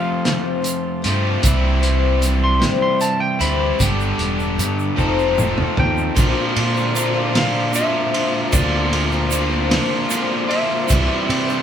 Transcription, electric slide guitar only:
0.00 1.39 F5 loud
2.44 2.62 C6 medium
2.82 3.01 C6 loud
3.01 3.21 A5 medium
3.20 3.40 G5 loud
3.41 4.17 B5 loud
5.80 7.37 G5 loud
7.37 7.75 F5 medium
7.76 8.56 E5 loud
8.53 10.07 D5 medium
10.49 11.62 E5 medium

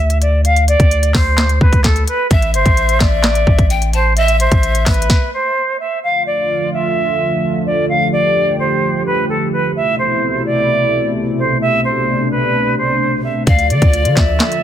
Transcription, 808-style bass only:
0.00 0.76 D2 loud
0.80 1.13 D2 loud
1.14 1.59 D2 loud
1.61 2.06 D2 loud
2.31 2.56 A1 loud
2.54 2.65 G1 loud
2.66 2.99 A1 loud
3.00 3.45 A1 loud
3.47 3.58 A1 loud
3.58 4.48 A1 loud
4.52 4.85 A1 loud
4.86 5.09 A1 loud
13.47 13.72 D2 loud
13.70 13.81 D3 loud
13.82 14.07 D2 loud
14.05 14.16 D3 loud
14.17 14.39 D2 loud

